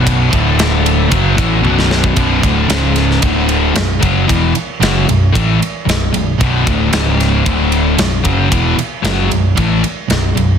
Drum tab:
RD |x-x-x-x-x-x-----|x-x-x-x-x-x-x-x-|x-x-x-x-x-x-x-x-|x-x-x-x-x-x-x-x-|
SD |----o--------oo-|----o-oo----o---|----o-------o---|----o-o-----o---|
T1 |------------o---|----------------|----------------|----------------|
BD |o-o-----o-o----o|o-o-----o-----o-|o-------o-------|o-o-----o-----o-|

RD |x-x-x-x-x-x-x-x-|
SD |----o-------o---|
T1 |----------------|
BD |o-------o-------|